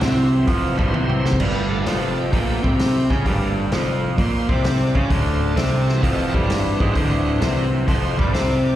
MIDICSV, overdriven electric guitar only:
0, 0, Header, 1, 2, 480
1, 0, Start_track
1, 0, Tempo, 462250
1, 1461, Time_signature, 4, 2, 24, 8
1, 9093, End_track
2, 0, Start_track
2, 0, Title_t, "Overdriven electric guitar"
2, 0, Program_c, 0, 29
2, 8, Note_on_c, 0, 48, 81
2, 16, Note_on_c, 0, 60, 85
2, 488, Note_off_c, 0, 48, 0
2, 492, Note_off_c, 0, 60, 0
2, 492, Note_on_c, 0, 41, 93
2, 496, Note_on_c, 0, 53, 107
2, 807, Note_off_c, 0, 41, 0
2, 811, Note_off_c, 0, 53, 0
2, 812, Note_on_c, 0, 43, 91
2, 817, Note_on_c, 0, 55, 90
2, 969, Note_off_c, 0, 43, 0
2, 973, Note_off_c, 0, 55, 0
2, 974, Note_on_c, 0, 48, 88
2, 977, Note_on_c, 0, 60, 101
2, 1448, Note_off_c, 0, 48, 0
2, 1452, Note_on_c, 0, 43, 84
2, 1455, Note_off_c, 0, 60, 0
2, 1459, Note_on_c, 0, 55, 102
2, 1930, Note_off_c, 0, 43, 0
2, 1934, Note_on_c, 0, 41, 83
2, 1935, Note_off_c, 0, 55, 0
2, 1943, Note_on_c, 0, 53, 88
2, 2406, Note_off_c, 0, 41, 0
2, 2410, Note_on_c, 0, 46, 94
2, 2411, Note_off_c, 0, 53, 0
2, 2415, Note_on_c, 0, 58, 107
2, 2723, Note_off_c, 0, 46, 0
2, 2728, Note_on_c, 0, 48, 75
2, 2731, Note_off_c, 0, 58, 0
2, 2735, Note_on_c, 0, 60, 90
2, 3206, Note_off_c, 0, 48, 0
2, 3210, Note_off_c, 0, 60, 0
2, 3211, Note_on_c, 0, 49, 99
2, 3218, Note_on_c, 0, 61, 101
2, 3371, Note_off_c, 0, 49, 0
2, 3373, Note_on_c, 0, 43, 93
2, 3374, Note_off_c, 0, 61, 0
2, 3378, Note_on_c, 0, 55, 93
2, 3852, Note_off_c, 0, 43, 0
2, 3855, Note_off_c, 0, 55, 0
2, 3856, Note_on_c, 0, 41, 79
2, 3864, Note_on_c, 0, 53, 89
2, 4334, Note_off_c, 0, 41, 0
2, 4338, Note_off_c, 0, 53, 0
2, 4338, Note_on_c, 0, 46, 92
2, 4344, Note_on_c, 0, 58, 110
2, 4652, Note_off_c, 0, 46, 0
2, 4655, Note_off_c, 0, 58, 0
2, 4660, Note_on_c, 0, 48, 94
2, 4666, Note_on_c, 0, 60, 89
2, 5132, Note_off_c, 0, 48, 0
2, 5134, Note_on_c, 0, 49, 98
2, 5135, Note_off_c, 0, 60, 0
2, 5142, Note_on_c, 0, 61, 102
2, 5286, Note_on_c, 0, 38, 90
2, 5292, Note_off_c, 0, 49, 0
2, 5296, Note_off_c, 0, 61, 0
2, 5296, Note_on_c, 0, 50, 96
2, 5767, Note_off_c, 0, 38, 0
2, 5771, Note_on_c, 0, 48, 82
2, 5774, Note_off_c, 0, 50, 0
2, 5783, Note_on_c, 0, 60, 93
2, 6251, Note_off_c, 0, 48, 0
2, 6257, Note_off_c, 0, 60, 0
2, 6257, Note_on_c, 0, 41, 98
2, 6263, Note_on_c, 0, 53, 109
2, 6571, Note_off_c, 0, 41, 0
2, 6574, Note_off_c, 0, 53, 0
2, 6581, Note_on_c, 0, 43, 93
2, 6589, Note_on_c, 0, 55, 89
2, 7052, Note_off_c, 0, 43, 0
2, 7056, Note_off_c, 0, 55, 0
2, 7063, Note_on_c, 0, 44, 85
2, 7066, Note_on_c, 0, 56, 101
2, 7211, Note_off_c, 0, 44, 0
2, 7214, Note_off_c, 0, 56, 0
2, 7215, Note_on_c, 0, 38, 82
2, 7219, Note_on_c, 0, 50, 98
2, 7686, Note_off_c, 0, 38, 0
2, 7691, Note_on_c, 0, 48, 80
2, 7693, Note_off_c, 0, 50, 0
2, 7697, Note_on_c, 0, 60, 101
2, 8165, Note_off_c, 0, 48, 0
2, 8170, Note_on_c, 0, 41, 92
2, 8173, Note_off_c, 0, 60, 0
2, 8177, Note_on_c, 0, 53, 108
2, 8483, Note_off_c, 0, 41, 0
2, 8488, Note_on_c, 0, 43, 78
2, 8491, Note_off_c, 0, 53, 0
2, 8499, Note_on_c, 0, 55, 94
2, 8644, Note_off_c, 0, 43, 0
2, 8648, Note_on_c, 0, 48, 93
2, 8651, Note_off_c, 0, 55, 0
2, 8655, Note_on_c, 0, 60, 107
2, 9093, Note_off_c, 0, 48, 0
2, 9093, Note_off_c, 0, 60, 0
2, 9093, End_track
0, 0, End_of_file